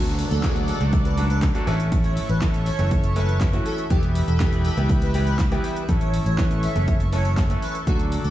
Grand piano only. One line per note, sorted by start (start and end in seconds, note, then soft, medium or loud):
0.00 0.32 F#3 medium
0.00 0.32 A3 medium
0.00 0.32 D4 medium
0.00 0.32 F#4 medium
0.00 0.32 A4 medium
0.43 0.72 F#3 medium
0.43 0.72 A3 medium
0.43 0.72 D4 medium
0.43 0.72 F#4 medium
0.43 0.72 G#4 medium
0.80 1.09 F#3 medium
0.80 1.09 A3 medium
0.80 1.09 D4 medium
0.80 1.09 F#4 medium
0.80 1.10 A4 medium
1.17 1.46 F#3 medium
1.17 1.47 A3 medium
1.17 1.47 D4 medium
1.17 1.47 F#4 medium
1.17 1.47 A4 medium
1.55 1.67 F#3 medium
1.55 1.66 A3 medium
1.55 1.67 D4 medium
1.55 1.67 F#4 medium
1.55 1.66 A4 loud
1.67 2.27 E3 loud
1.67 2.27 A3 medium
1.67 2.27 C#4 medium
1.67 2.27 E4 medium
1.67 2.27 A4 loud
2.41 2.70 E3 medium
2.41 2.71 A3 medium
2.41 2.71 C#4 medium
2.41 2.71 E4 medium
2.41 2.71 A4 medium
2.79 3.08 E3 medium
2.79 3.08 A3 medium
2.79 3.08 C#4 medium
2.79 3.08 E4 medium
2.79 3.08 A4 medium
3.16 3.45 E3 medium
3.16 3.45 A3 medium
3.16 3.45 C#4 medium
3.16 3.45 E4 medium
3.16 3.45 A4 medium
3.53 3.82 E3 medium
3.53 3.82 A3 medium
3.53 3.82 C#4 medium
3.53 3.82 E4 medium
3.53 3.82 F#4 medium
3.90 4.29 E3 medium
3.90 4.29 G3 medium
3.90 4.29 B3 medium
3.90 4.29 E4 medium
3.90 4.29 G4 medium
4.40 4.69 E3 medium
4.40 4.69 G3 medium
4.40 4.69 B3 medium
4.40 4.69 E4 medium
4.40 4.69 G4 medium
4.77 5.06 E3 medium
4.77 5.06 G3 medium
4.77 5.06 B3 medium
4.77 5.06 E4 medium
4.77 5.06 G4 medium
5.14 5.43 E3 medium
5.14 5.43 G3 medium
5.14 5.43 B3 medium
5.14 5.43 E4 medium
5.14 5.43 G4 medium
5.52 5.80 E3 medium
5.52 5.81 G3 medium
5.52 5.81 B3 medium
5.52 5.81 E4 medium
5.52 5.81 G4 loud
5.89 6.27 E3 medium
5.89 6.27 A3 medium
5.89 6.27 C#4 medium
5.89 6.27 E4 medium
5.89 6.28 A4 medium
6.38 6.67 E3 medium
6.38 6.67 A3 medium
6.38 6.67 C#4 medium
6.38 6.67 E4 medium
6.38 6.67 B4 medium
6.75 7.04 E3 medium
6.75 7.04 A3 medium
6.75 7.04 C#4 medium
6.75 7.05 E4 medium
6.75 7.05 A4 medium
7.12 7.42 E3 medium
7.12 7.42 A3 medium
7.12 7.42 C#4 medium
7.12 7.42 E4 medium
7.12 7.42 A4 medium
7.50 7.79 E3 medium
7.50 7.79 A3 medium
7.50 7.79 C#4 medium
7.50 7.79 E4 medium
7.50 7.79 A4 medium
7.87 8.25 F#3 medium
7.87 8.26 A3 medium
7.87 8.26 D4 medium
7.87 8.26 F#4 medium
7.87 8.26 A4 medium